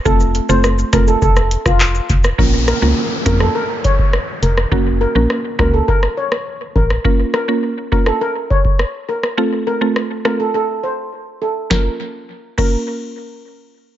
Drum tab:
CC |----------------|----------------|----------------|----------------|
HH |--x---x---x---x-|--x---x---x---x-|----------------|----------------|
SH |xxxxxxxxxxxxxxxx|----------------|----------------|----------------|
CP |------------x---|----------------|----------------|----------------|
SD |----r-r--r-r---r|--r----r----r--r|----r-r--r-r---r|--r----r----r--r|
BD |o-----o-o--o--o-|o-----o---oo----|o-----o-o-----o-|o-----o---oo----|

CC |----------------|------x---------|
HH |----------------|----------------|
SH |----------------|----------------|
CP |----------------|----------------|
SD |----r-r---------|o---------------|
BD |----------------|o-----o---------|